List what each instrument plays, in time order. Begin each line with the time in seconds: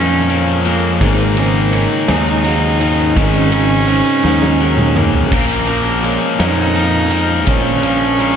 Already playing: fingered electric bass F2, distorted electric guitar A#2 F3 A#3, clean electric guitar A#2 F3 G#3 C#4, cello C#4, ambient pad C#4 A#4 F5 G#5, vibraphone A#4
0.28 distorted electric guitar A#2 F3 A#3, clean electric guitar F3, vibraphone C#5, ride
0.65 distorted electric guitar A#2 F3 A#3, clean electric guitar G#3, cello A#3, ride
1.00 fingered electric bass G#1, distorted electric guitar G#2 D#3 G#3, clean electric guitar G#2, cello A#3, ambient pad F#4 D#5, vibraphone C5, kick, ride
1.37 distorted electric guitar G#2 D#3 G#3, clean electric guitar C#3, ride
1.72 distorted electric guitar G#2 D#3 G#3, clean electric guitar C#4, vibraphone C#5, ride
2.08 fingered electric bass D#2, distorted electric guitar G#2 D#3 G#3, clean electric guitar D#4, cello D#4, snare, ride
2.44 distorted electric guitar G#2 D#3 G#3, clean electric guitar F#3, vibraphone F5, ride
2.80 distorted electric guitar G#2 D#3 G#3, clean electric guitar C#4, ride
3.16 fingered electric bass G#1, clean electric guitar G#2, distorted electric guitar G#2 D#3 G#3, cello C#4, vibraphone D#5, ambient pad F5, kick, ride
3.52 distorted electric guitar G#2 D#3 G#3, clean electric guitar C#3, ride
3.88 distorted electric guitar G#2 D#3 G#3, clean electric guitar C#4, vibraphone C5, ride
4.23 fingered electric bass D#2, distorted electric guitar G#2 D#3 G#3, clean electric guitar D#4, snare
4.42 snare
4.59 distorted electric guitar G#2 D#3 G#3, clean electric guitar F#3, vibraphone C#5
4.78 mid tom
4.95 distorted electric guitar G#2 D#3 G#3, cello A#3, clean electric guitar C#4, mid tom
5.13 floor tom
5.31 fingered electric bass A#1, clean electric guitar A#2, distorted electric guitar A#2 F3 A#3, cello A#3, vibraphone A#4, ambient pad A#4, kick, splash, crash
5.67 distorted electric guitar A#2 F3 A#3, clean electric guitar F3, ride
6.03 distorted electric guitar A#2 F3 A#3, clean electric guitar G#3, vibraphone C#5, ride
6.39 fingered electric bass F2, distorted electric guitar A#2 F3 A#3, clean electric guitar C#4, cello D#4, snare, ride
6.75 distorted electric guitar A#2 F3 A#3, clean electric guitar F3, vibraphone F5, ride
7.11 distorted electric guitar A#2 F3 A#3, clean electric guitar G#3, ride
7.47 fingered electric bass A#1, clean electric guitar A#2, distorted electric guitar A#2 F3 A#3, cello C#4, vibraphone C#5, kick, ride
7.83 distorted electric guitar A#2 F3 A#3, clean electric guitar F3, ride
8.18 distorted electric guitar A#2 F3 A#3, clean electric guitar G#3, vibraphone A#4, ride